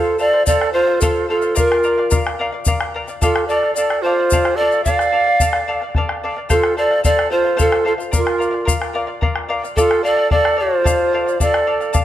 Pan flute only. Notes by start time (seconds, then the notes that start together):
Already playing: A4
0.20 D5
0.46 D5
0.73 C5
1.01 A4
1.30 A4
1.58 A#4
3.23 A4
3.48 D5
3.74 D5
4.02 C5
4.57 D5
4.84 F5
6.50 A4
6.78 D5
7.04 D5
7.31 C5
7.60 A4
7.87 A4
8.15 A#4
9.76 A4
10.04 D5
10.31 D5
10.59 C5
11.42 D5